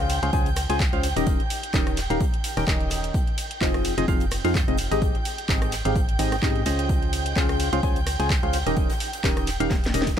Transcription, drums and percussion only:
0.09 closed hi-hat medium
0.09 open hi-hat loud
0.09 ride medium
0.23 closed hi-hat medium
0.33 kick loud
0.33 closed hi-hat loud
0.46 closed hi-hat medium
0.46 closed hi-hat soft
0.56 cross-stick medium
0.56 closed hi-hat medium
0.56 open hi-hat loud
0.56 ride medium
0.70 snare soft
0.70 closed hi-hat medium
0.80 kick loud
0.80 snare loud
0.80 clap loud
0.80 closed hi-hat medium
0.93 closed hi-hat soft
1.03 closed hi-hat medium
1.03 open hi-hat loud
1.03 ride medium
1.17 closed hi-hat medium
1.17 closed hi-hat soft
1.27 kick loud
1.27 closed hi-hat medium
1.40 closed hi-hat soft
1.50 closed hi-hat medium
1.50 open hi-hat loud
1.50 ride medium
1.63 closed hi-hat medium
1.73 kick loud
1.73 snare loud
1.73 clap loud
1.73 closed hi-hat medium
1.87 cross-stick medium
1.87 closed hi-hat medium
1.87 closed hi-hat soft
1.97 clap soft
1.97 closed hi-hat medium
1.97 open hi-hat loud
1.97 ride medium
2.10 closed hi-hat medium
2.21 kick loud
2.21 closed hi-hat medium
2.34 closed hi-hat medium
2.44 closed hi-hat medium
2.44 open hi-hat loud
2.44 ride medium
2.57 cross-stick medium
2.57 snare medium
2.57 closed hi-hat medium
2.67 kick loud
2.67 snare loud
2.67 clap loud
2.67 closed hi-hat medium
2.81 closed hi-hat soft
2.90 snare loud
2.90 closed hi-hat medium
2.90 open hi-hat loud
2.90 ride medium
3.04 closed hi-hat medium
3.14 kick loud
3.14 closed hi-hat medium
3.27 closed hi-hat soft
3.38 closed hi-hat medium
3.38 open hi-hat loud
3.38 ride medium
3.51 closed hi-hat medium
3.61 kick loud
3.61 snare loud
3.61 clap loud
3.61 closed hi-hat medium
3.74 cross-stick medium
3.74 snare medium
3.74 closed hi-hat soft
3.85 closed hi-hat medium
3.85 open hi-hat loud
3.85 ride medium
3.98 closed hi-hat medium
4.08 kick loud
4.08 closed hi-hat medium
4.20 closed hi-hat soft
4.20 closed hi-hat medium
4.31 cross-stick medium
4.31 closed hi-hat medium
4.31 open hi-hat loud
4.31 ride medium
4.45 snare medium
4.45 closed hi-hat medium
4.55 kick loud
4.55 snare loud
4.55 clap loud
4.55 closed hi-hat loud
4.68 closed hi-hat soft
4.77 closed hi-hat medium
4.77 open hi-hat loud
4.77 ride medium
4.92 closed hi-hat medium
4.92 closed hi-hat soft
5.02 kick loud
5.02 closed hi-hat medium
5.15 closed hi-hat soft
5.25 closed hi-hat medium
5.25 open hi-hat loud
5.25 ride medium
5.38 closed hi-hat medium
5.49 kick loud
5.49 snare loud
5.49 clap loud
5.49 closed hi-hat medium
5.62 cross-stick medium
5.62 closed hi-hat soft
5.62 closed hi-hat medium
5.72 clap soft
5.72 closed hi-hat medium
5.72 open hi-hat loud
5.72 ride medium
5.85 closed hi-hat medium
5.96 kick loud
5.96 closed hi-hat medium
6.09 closed hi-hat medium
6.19 closed hi-hat medium
6.19 open hi-hat loud
6.19 ride medium
6.32 cross-stick medium
6.32 snare medium
6.32 closed hi-hat medium
6.43 kick loud
6.43 snare loud
6.43 clap loud
6.43 closed hi-hat medium
6.56 closed hi-hat soft
6.66 closed hi-hat medium
6.66 open hi-hat loud
6.66 ride medium
6.79 closed hi-hat medium
6.89 kick loud
6.89 closed hi-hat medium
7.03 closed hi-hat soft
7.13 closed hi-hat medium
7.13 open hi-hat loud
7.13 ride medium
7.26 closed hi-hat medium
7.36 kick loud
7.36 snare loud
7.36 clap loud
7.36 closed hi-hat medium
7.49 cross-stick medium
7.49 snare medium
7.49 closed hi-hat medium
7.60 closed hi-hat medium
7.60 open hi-hat loud
7.60 ride medium
7.73 closed hi-hat medium
7.83 kick loud
7.83 closed hi-hat medium
7.96 closed hi-hat soft
7.96 closed hi-hat medium
8.07 cross-stick medium
8.07 closed hi-hat medium
8.07 open hi-hat loud
8.07 ride medium
8.19 snare soft
8.19 closed hi-hat medium
8.30 kick loud
8.30 snare loud
8.30 clap loud
8.30 closed hi-hat loud
8.43 closed hi-hat soft
8.53 snare loud
8.53 closed hi-hat medium
8.53 open hi-hat loud
8.53 ride medium
8.66 closed hi-hat soft
8.66 closed hi-hat medium
8.77 kick loud
8.77 closed hi-hat medium
8.90 snare loud
8.90 closed hi-hat medium
8.90 closed hi-hat soft
9.00 closed hi-hat soft
9.00 open hi-hat loud
9.00 ride medium
9.13 closed hi-hat medium
9.24 kick loud
9.24 snare loud
9.24 clap loud
9.24 closed hi-hat loud
9.37 cross-stick medium
9.37 closed hi-hat soft
9.37 closed hi-hat medium
9.47 clap soft
9.47 closed hi-hat medium
9.47 open hi-hat loud
9.47 ride medium
9.60 closed hi-hat medium
9.71 kick loud
9.71 snare loud
9.71 snare medium
9.71 closed hi-hat medium
9.84 snare medium
9.84 closed hi-hat medium
9.84 closed hi-hat soft
9.94 closed hi-hat medium
9.94 open hi-hat loud
9.94 ride medium
10.02 snare medium
10.07 kick medium
10.07 snare loud
10.07 closed hi-hat medium

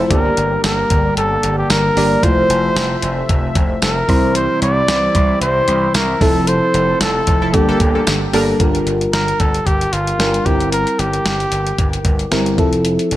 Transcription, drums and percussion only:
0.11 kick loud
0.11 closed hi-hat medium
0.37 closed hi-hat medium
0.64 snare loud
0.64 closed hi-hat medium
0.64 tambourine medium
0.90 kick medium
0.90 closed hi-hat medium
1.17 closed hi-hat medium
1.43 closed hi-hat medium
1.70 snare loud
1.70 closed hi-hat medium
1.70 tambourine medium
1.97 open hi-hat medium
2.23 kick loud
2.23 closed hi-hat loud
2.50 closed hi-hat medium
2.76 snare loud
2.76 closed hi-hat loud
2.76 tambourine medium
3.02 closed hi-hat medium
3.29 kick medium
3.29 closed hi-hat medium
3.55 kick loud
3.55 closed hi-hat medium
3.82 snare loud
3.82 closed hi-hat medium
3.82 tambourine medium
4.09 kick loud
4.09 open hi-hat medium
4.35 closed hi-hat medium
4.62 closed hi-hat medium
4.88 snare loud
4.88 closed hi-hat medium
4.88 tambourine medium
5.15 kick medium
5.15 closed hi-hat medium
5.42 closed hi-hat medium
5.68 closed hi-hat medium
5.94 snare loud
5.94 closed hi-hat medium
5.94 tambourine medium
6.21 kick loud
6.21 open hi-hat medium
6.47 closed hi-hat loud
6.74 closed hi-hat medium
7.01 snare loud
7.01 closed hi-hat loud
7.01 tambourine medium
7.27 kick medium
7.27 closed hi-hat medium
7.54 kick medium
7.54 closed hi-hat medium
7.80 kick loud
7.80 closed hi-hat medium
8.07 snare loud
8.07 closed hi-hat medium
8.07 tambourine medium
8.33 open hi-hat medium
8.60 kick loud
8.60 closed hi-hat medium
8.75 closed hi-hat medium
8.87 closed hi-hat medium
9.01 closed hi-hat soft
9.13 snare loud
9.13 closed hi-hat medium
9.28 closed hi-hat soft
9.40 kick medium
9.40 closed hi-hat medium
9.54 closed hi-hat medium
9.67 kick medium
9.67 closed hi-hat medium
9.81 closed hi-hat medium
9.93 closed hi-hat medium
10.07 closed hi-hat medium
10.20 snare loud
10.20 closed hi-hat medium
10.34 closed hi-hat medium
10.46 kick loud
10.46 closed hi-hat medium
10.60 closed hi-hat medium
10.72 closed hi-hat medium
10.87 closed hi-hat medium
10.99 closed hi-hat medium
11.13 closed hi-hat soft
11.26 snare loud
11.26 closed hi-hat medium
11.40 closed hi-hat soft
11.52 closed hi-hat medium
11.67 closed hi-hat medium
11.78 kick medium
11.78 closed hi-hat medium
11.93 closed hi-hat medium
12.05 kick loud
12.05 closed hi-hat medium
12.19 closed hi-hat medium
12.32 snare loud
12.32 closed hi-hat medium
12.46 closed hi-hat medium
12.58 kick loud
12.58 closed hi-hat medium
12.73 closed hi-hat medium
12.85 closed hi-hat medium
12.99 closed hi-hat soft
13.11 closed hi-hat medium

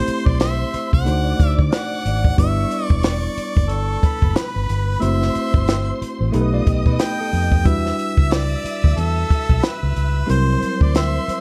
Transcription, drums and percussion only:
0.08 closed hi-hat medium
0.26 kick loud
0.40 snare loud
0.40 closed hi-hat medium
0.74 closed hi-hat medium
0.93 kick loud
1.06 closed hi-hat medium
1.40 kick medium
1.40 closed hi-hat medium
1.59 kick medium
1.72 snare loud
1.72 closed hi-hat medium
2.06 closed hi-hat medium
2.25 kick medium
2.38 kick loud
2.38 closed hi-hat medium
2.71 closed hi-hat medium
2.90 kick loud
3.03 snare loud
3.03 closed hi-hat medium
3.38 closed hi-hat medium
3.57 kick loud
3.69 closed hi-hat medium
4.03 kick loud
4.03 closed hi-hat medium
4.22 kick medium
4.36 snare loud
4.36 closed hi-hat medium
4.69 closed hi-hat medium
5.02 closed hi-hat medium
5.22 snare soft
5.35 closed hi-hat medium
5.54 kick loud
5.68 snare loud
5.68 closed hi-hat medium
6.02 closed hi-hat medium
6.34 closed hi-hat medium
6.67 kick medium
6.67 closed hi-hat medium
6.86 kick medium
6.99 snare loud
6.99 closed hi-hat loud
7.33 open hi-hat medium
7.52 kick medium
7.65 kick loud
7.65 closed hi-hat medium
7.86 snare soft
7.99 closed hi-hat medium
8.17 kick medium
8.31 snare loud
8.31 closed hi-hat medium
8.66 closed hi-hat medium
8.84 kick medium
8.97 closed hi-hat medium
9.30 kick medium
9.30 closed hi-hat medium
9.49 kick medium
9.63 snare loud
9.63 closed hi-hat medium
9.96 closed hi-hat medium
10.29 closed hi-hat medium
10.63 closed hi-hat medium
10.81 kick loud
10.95 snare loud
10.95 closed hi-hat loud
11.29 closed hi-hat medium

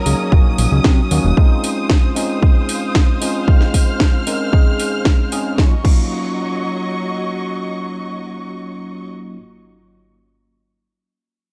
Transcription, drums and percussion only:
0.06 open hi-hat loud
0.32 kick loud
0.58 open hi-hat loud
0.84 kick loud
0.84 snare loud
1.11 open hi-hat loud
1.37 kick loud
1.64 open hi-hat loud
1.90 kick loud
1.90 snare loud
2.16 open hi-hat loud
2.42 kick loud
2.69 open hi-hat loud
2.95 kick loud
2.95 snare loud
3.22 open hi-hat loud
3.48 kick loud
3.61 snare soft
3.74 kick medium
3.74 open hi-hat loud
4.00 kick loud
4.00 snare loud
4.27 open hi-hat loud
4.53 kick loud
4.80 open hi-hat loud
5.05 kick loud
5.05 snare loud
5.32 open hi-hat loud
5.58 kick loud
5.58 snare medium
5.85 kick loud
5.85 crash medium

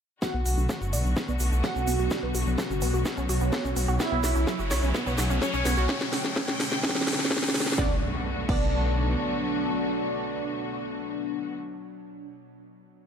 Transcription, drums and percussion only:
0.22 kick loud
0.22 snare soft
0.22 shaker soft
0.46 open hi-hat loud
0.46 shaker medium
0.58 shaker soft
0.69 kick loud
0.69 snare soft
0.69 shaker medium
0.82 shaker soft
0.93 open hi-hat medium
0.93 shaker medium
1.05 shaker soft
1.16 kick loud
1.16 snare medium
1.16 shaker soft
1.29 shaker soft
1.39 open hi-hat loud
1.39 shaker medium
1.52 shaker soft
1.64 kick loud
1.64 snare medium
1.64 shaker soft
1.76 shaker soft
1.87 open hi-hat loud
1.87 shaker medium
1.99 shaker soft
2.10 kick loud
2.10 snare medium
2.10 shaker soft
2.35 open hi-hat loud
2.35 shaker medium
2.47 shaker soft
2.58 kick loud
2.58 snare medium
2.58 shaker soft
2.71 shaker soft
2.82 open hi-hat loud
2.82 shaker medium
2.94 shaker soft
3.05 kick loud
3.05 snare medium
3.05 shaker medium
3.17 shaker soft
3.29 open hi-hat loud
3.29 shaker medium
3.40 shaker soft
3.52 kick loud
3.52 snare medium
3.52 shaker medium
3.65 shaker soft
3.76 open hi-hat loud
3.76 shaker medium
3.88 shaker soft
4.00 kick loud
4.00 snare medium
4.00 shaker medium
4.24 snare medium
4.24 open hi-hat loud
4.24 shaker loud
4.35 shaker soft
4.47 kick loud
4.47 snare medium
4.47 shaker soft
4.59 shaker soft
4.71 snare medium
4.71 open hi-hat loud
4.71 shaker loud
4.82 shaker soft
4.95 kick loud
4.95 snare medium
4.95 shaker soft
5.07 shaker soft
5.18 snare medium
5.18 open hi-hat loud
5.18 shaker loud
5.30 shaker soft
5.42 kick loud
5.42 snare medium
5.42 shaker medium
5.53 shaker soft
5.65 snare medium
5.65 open hi-hat loud
5.65 shaker medium
5.77 shaker soft
5.89 kick loud
5.89 snare loud
6.01 snare medium
6.13 snare medium
6.13 open hi-hat loud
6.25 snare medium
6.36 kick loud
6.36 snare medium
6.48 snare medium
6.60 snare medium
6.60 open hi-hat loud
6.72 snare medium
6.83 kick loud
6.83 snare loud
6.89 snare medium
6.95 snare medium
7.01 snare medium
7.07 snare loud
7.07 open hi-hat loud
7.13 snare medium
7.19 snare medium
7.25 snare loud
7.31 kick loud
7.31 snare loud
7.37 snare medium
7.43 snare loud
7.49 snare loud
7.54 snare loud
7.54 open hi-hat loud
7.60 snare loud
7.66 snare loud
7.72 snare loud
7.78 kick loud
7.78 snare medium
8.49 kick loud
8.49 crash medium

